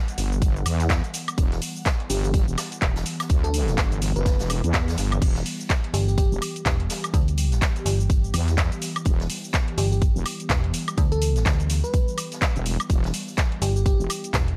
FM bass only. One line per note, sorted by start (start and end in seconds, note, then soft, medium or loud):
5.94 6.30 G1 loud
6.66 6.88 E1 loud
7.14 7.60 D2 loud
7.86 8.32 G1 medium
9.78 10.14 G1 medium
10.50 10.72 E1 loud
10.98 11.44 D2 loud
11.46 11.82 D2 loud
13.62 13.98 G1 medium
14.34 14.56 E1 loud